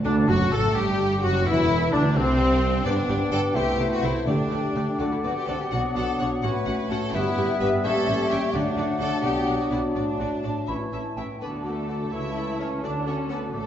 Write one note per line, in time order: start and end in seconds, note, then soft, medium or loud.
0.04 0.27 D2 medium
0.04 0.26 D3 medium
0.04 0.27 D3 medium
0.04 0.13 D4 medium
0.04 0.30 D4 medium
0.04 0.16 D4 medium
0.04 0.13 D4 medium
0.28 0.52 F#1 medium
0.28 0.52 F#2 medium
0.28 0.39 F#3 medium
0.28 0.54 F#3 medium
0.28 0.51 F#4 medium
0.28 0.53 F#4 medium
0.28 0.54 F#4 medium
0.28 0.52 F#4 medium
0.28 0.37 F#4 medium
0.28 0.52 F#4 medium
0.51 0.75 A1 medium
0.51 0.75 A2 medium
0.51 0.74 A3 medium
0.51 0.75 A3 medium
0.51 0.77 A4 medium
0.51 0.75 A4 medium
0.51 0.60 A4 medium
0.51 0.76 A4 medium
0.51 0.75 A4 medium
0.51 0.76 A4 medium
0.74 1.22 G1 medium
0.74 1.22 G2 medium
0.74 1.21 G3 medium
0.74 1.22 G3 medium
0.74 1.22 G4 medium
0.74 1.23 G4 medium
0.74 1.22 G4 medium
1.21 1.46 F#1 medium
1.21 1.46 F#2 medium
1.21 1.45 F#3 medium
1.21 1.48 F#3 medium
1.21 1.45 F#4 medium
1.21 1.33 F#4 medium
1.21 1.31 F#4 medium
1.21 1.48 F#4 medium
1.21 1.46 F#4 medium
1.45 1.93 E1 medium
1.45 1.92 E2 medium
1.45 1.91 E3 medium
1.45 1.94 E3 medium
1.45 1.91 E4 medium
1.45 1.92 E4 medium
1.45 1.94 E4 medium
1.45 1.92 E4 medium
1.45 1.93 E4 medium
1.45 1.92 E4 medium
1.92 2.15 D2 medium
1.92 2.17 D3 medium
1.92 2.15 D3 medium
1.92 2.02 D4 medium
1.92 2.16 D4 medium
1.92 2.15 D4 medium
1.92 2.01 D4 medium
1.92 2.15 D4 medium
1.92 2.18 D4 medium
2.15 2.85 C2 medium
2.15 2.85 C3 medium
2.15 2.86 C3 medium
2.15 2.83 C4 medium
2.15 2.84 C4 medium
2.15 2.85 C4 medium
2.85 2.93 G1 medium
2.85 2.93 G2 medium
2.85 2.93 B3 medium
2.85 4.29 B3 medium
2.85 3.52 B3 medium
2.85 3.56 D4 medium
2.85 3.32 D4 medium
2.85 2.93 G4 medium
2.85 3.51 G4 medium
2.85 2.93 D5 medium
2.85 3.58 D5 medium
2.85 3.57 G5 medium
3.08 3.16 G1 medium
3.08 3.16 G2 medium
3.08 3.17 B3 medium
3.08 3.17 G4 medium
3.08 3.18 D5 medium
3.31 3.39 G1 medium
3.31 3.39 G2 medium
3.31 3.40 B3 medium
3.31 3.40 G4 medium
3.31 3.40 A4 loud
3.31 3.40 D5 medium
3.54 3.63 C2 medium
3.54 3.63 C3 medium
3.54 5.48 A3 medium
3.54 4.29 A3 medium
3.54 3.63 A3 medium
3.54 4.26 E4 medium
3.54 3.63 E4 medium
3.54 3.90 G4 medium
3.54 3.64 C5 medium
3.54 4.26 C5 medium
3.54 4.27 E5 medium
3.79 3.87 C2 medium
3.79 3.87 C3 medium
3.79 3.87 A3 soft
3.79 3.87 E4 soft
3.79 3.87 C5 soft
3.92 4.03 F#4 medium
4.02 4.10 C2 medium
4.02 4.11 C3 medium
4.02 4.10 A3 soft
4.02 4.10 E4 soft
4.02 4.27 E4 medium
4.02 4.11 C5 soft
4.26 4.35 D2 medium
4.26 4.95 D3 medium
4.26 4.35 D3 medium
4.26 4.35 A3 soft
4.26 4.95 A3 soft
4.26 4.98 D4 medium
4.26 5.48 D4 medium
4.26 4.97 G4 soft
4.26 4.34 G4 medium
4.26 6.39 D5 medium
4.26 4.35 D5 medium
4.26 5.00 G5 medium
4.51 4.59 D2 soft
4.51 4.59 D3 medium
4.51 4.59 A3 soft
4.51 4.59 G4 soft
4.51 4.59 D5 soft
4.75 4.83 D2 soft
4.75 4.83 D3 soft
4.75 4.83 A3 soft
4.75 4.83 G4 soft
4.75 4.83 D5 soft
4.98 5.07 D2 soft
4.98 5.08 D3 soft
4.98 5.10 A3 medium
4.98 5.08 A3 soft
4.98 5.08 F#4 soft
4.98 7.14 F#4 soft
4.98 5.07 D5 soft
4.98 6.82 F#5 soft
5.12 5.17 E4 medium
5.24 5.32 D2 soft
5.24 5.32 D3 soft
5.24 5.32 A3 soft
5.24 5.35 B3 medium
5.24 5.36 F#4 medium
5.24 5.32 F#4 soft
5.24 5.32 D5 soft
5.37 5.48 G4 medium
5.48 5.56 D2 soft
5.48 5.56 D3 soft
5.48 5.56 A3 soft
5.48 5.59 C4 medium
5.48 5.56 F#4 soft
5.48 5.60 A4 medium
5.48 5.56 D5 soft
5.60 5.72 G4 medium
5.72 5.80 B1 medium
5.72 5.80 B2 medium
5.72 7.15 F#3 medium
5.72 6.45 B3 medium
5.72 5.80 D4 soft
5.72 6.39 D4 soft
5.72 5.80 F#4 soft
5.72 5.80 F#4 medium
5.72 5.80 F#5 soft
5.95 6.04 B1 soft
5.95 6.04 B2 soft
5.95 6.04 D4 soft
5.95 6.04 F#4 soft
5.95 6.19 A4 medium
5.95 6.04 F#5 soft
6.19 6.28 B1 soft
6.19 6.28 B2 soft
6.19 6.28 D4 soft
6.19 6.28 F#4 soft
6.19 6.28 C#5 medium
6.19 6.27 F#5 soft
6.43 6.51 A1 medium
6.43 6.51 A2 medium
6.43 7.13 A3 medium
6.43 6.51 C#4 soft
6.43 7.14 C#4 soft
6.43 6.51 F#4 soft
6.43 6.89 B4 medium
6.43 7.16 C#5 soft
6.43 6.51 F#5 soft
6.66 6.75 A1 medium
6.66 6.75 A2 soft
6.66 6.74 C#4 soft
6.66 6.75 F#4 soft
6.66 6.74 F#5 soft
6.90 6.98 A1 medium
6.90 6.98 A2 medium
6.90 6.98 C#4 soft
6.90 6.98 F#4 soft
6.90 7.14 A4 medium
6.90 6.99 F#5 soft
7.13 7.21 G1 medium
7.13 7.21 G2 medium
7.13 8.54 G3 medium
7.13 7.22 B3 medium
7.13 7.86 B3 medium
7.13 7.84 B3 medium
7.13 7.61 E4 medium
7.13 7.22 G4 medium
7.13 8.54 G4 medium
7.13 7.86 B4 medium
7.13 8.51 E5 medium
7.13 7.22 E5 medium
7.37 7.45 G1 medium
7.37 7.45 G2 medium
7.37 7.45 B3 medium
7.37 7.45 G4 medium
7.37 7.46 E5 soft
7.60 7.69 G1 medium
7.60 7.68 G2 medium
7.60 7.68 B3 soft
7.60 7.68 G4 soft
7.60 7.68 B4 medium
7.60 7.69 E5 soft
7.84 7.92 A1 medium
7.84 7.92 A2 medium
7.84 8.56 A#3 medium
7.84 7.92 C#4 soft
7.84 8.54 C#4 medium
7.84 7.92 G4 medium
7.84 8.30 A4 medium
7.84 8.56 C#5 medium
7.84 7.92 E5 medium
8.07 8.16 A1 medium
8.07 8.16 A2 medium
8.07 8.15 C#4 soft
8.07 8.15 G4 soft
8.07 8.15 E5 soft
8.30 8.39 A1 medium
8.30 8.39 A2 medium
8.30 8.38 C#4 medium
8.30 8.38 G4 medium
8.30 8.54 G4 medium
8.30 8.39 E5 medium
8.53 8.62 D2 medium
8.53 8.62 D3 medium
8.53 10.70 F#3 medium
8.53 9.26 A3 medium
8.53 8.62 D4 medium
8.53 9.00 D4 medium
8.53 10.64 D4 medium
8.53 8.62 F#4 medium
8.53 10.64 F#4 medium
8.53 8.62 D5 medium
8.53 10.39 D5 medium
8.53 9.64 F#5 medium
8.77 8.85 D2 medium
8.77 8.85 D3 medium
8.77 8.85 D4 soft
8.77 8.85 F#4 medium
8.77 8.86 D5 soft
9.00 9.08 D2 soft
9.00 9.08 D3 medium
9.00 9.08 D4 soft
9.00 9.08 F#4 soft
9.00 9.23 A4 medium
9.00 9.10 D5 soft
9.23 9.31 B1 medium
9.23 9.32 B2 medium
9.23 9.95 B3 soft
9.23 9.31 D4 soft
9.23 9.31 F#4 soft
9.23 9.58 G4 medium
9.23 9.31 D5 medium
9.46 9.55 B1 soft
9.46 9.55 B2 soft
9.46 9.55 D4 soft
9.46 9.54 F#4 soft
9.46 9.55 D5 soft
9.60 9.71 F#4 medium
9.71 9.79 B1 soft
9.71 9.79 B2 soft
9.71 9.79 D4 soft
9.71 9.79 E4 medium
9.71 9.79 F#4 soft
9.71 9.79 D5 soft
9.94 10.03 A1 soft
9.94 10.03 A2 soft
9.94 11.15 A3 soft
9.94 10.02 D4 soft
9.94 10.66 D4 medium
9.94 10.02 F#4 soft
9.94 10.04 D5 soft
9.94 10.59 A5 soft
10.19 10.27 A1 soft
10.19 10.28 A2 soft
10.19 10.27 D4 soft
10.19 10.27 F#4 soft
10.19 10.28 D5 soft
10.44 10.52 A1 soft
10.44 10.53 A2 soft
10.44 10.52 D4 soft
10.44 10.52 F#4 soft
10.44 10.52 D5 soft
10.68 10.76 A1 soft
10.68 10.77 A2 soft
10.68 11.17 E3 soft
10.68 11.17 C#4 soft
10.68 10.76 C#4 soft
10.68 10.77 E4 soft
10.68 11.17 E4 soft
10.68 11.14 C#5 soft
10.68 10.76 E5 soft
10.68 10.74 B5 soft
10.92 11.00 A1 soft
10.92 11.01 A2 soft
10.92 11.01 C#4 soft
10.92 11.01 E4 soft
10.92 11.01 E5 soft
10.92 11.18 A5 soft
11.17 11.25 A1 soft
11.17 11.25 A2 soft
11.17 11.25 C#4 soft
11.17 11.25 E4 soft
11.17 11.25 E5 soft
11.17 11.41 G5 soft
11.41 12.00 D2 soft
11.41 11.64 D3 soft
11.41 12.01 D3 soft
11.41 13.66 A3 soft
11.41 11.63 B3 soft
11.41 11.65 F#4 soft
11.41 12.09 F#4 soft
11.41 11.50 B4 soft
11.41 11.65 D5 soft
11.41 11.64 A5 soft
11.64 11.88 D3 soft
11.64 12.12 A3 soft
11.64 11.89 F#4 soft
11.64 11.73 F#4 soft
11.64 12.12 A4 soft
11.64 11.88 D5 soft
11.64 11.73 D5 soft
11.64 11.87 A5 soft
11.88 12.12 D3 soft
11.88 11.97 F#4 soft
11.88 12.12 F#4 soft
11.88 12.12 D5 soft
11.88 11.97 D5 soft
11.88 12.11 A5 soft
12.12 12.71 C#2 soft
12.12 12.71 C#3 soft
12.12 12.36 E3 soft
12.12 12.58 E4 soft
12.12 12.83 E4 soft
12.12 12.36 A4 soft
12.12 12.36 C#5 soft
12.12 12.60 E5 soft
12.12 12.35 A5 soft
12.36 12.59 E3 soft
12.36 12.59 A4 soft
12.36 12.44 A4 soft
12.36 12.60 C#5 soft
12.36 12.44 E5 soft
12.36 12.58 A5 soft
12.59 12.83 E3 soft
12.59 12.83 C#4 soft
12.59 12.82 A4 soft
12.59 12.68 A4 soft
12.59 12.68 C#5 soft
12.59 12.83 C#5 soft
12.59 12.67 E5 soft
12.59 12.81 A5 soft
12.82 13.41 D2 soft
12.82 13.41 D3 soft
12.82 13.06 F#3 soft
12.82 13.06 D4 soft
12.82 13.66 F#4 soft
12.82 13.06 A4 soft
12.82 13.06 D5 soft
12.82 12.92 D5 soft
12.82 13.05 A5 soft
13.06 13.29 F#3 soft
13.06 13.29 C#4 soft
13.06 13.29 A4 soft
13.06 13.14 A4 soft
13.06 13.16 C#5 soft
13.06 13.29 D5 soft
13.06 13.14 F#5 soft
13.06 13.29 A5 soft
13.29 13.52 F#3 soft
13.29 13.53 B3 soft
13.29 13.53 A4 soft
13.29 13.38 A4 soft
13.29 13.39 B4 soft
13.29 13.53 D5 soft
13.29 13.37 F#5 soft
13.29 13.52 A5 soft
13.53 13.66 A1 soft
13.53 13.66 A2 soft
13.53 13.66 F#3 soft
13.53 13.66 A3 soft
13.53 13.66 A4 soft
13.53 13.66 D5 soft
13.53 13.66 A5 soft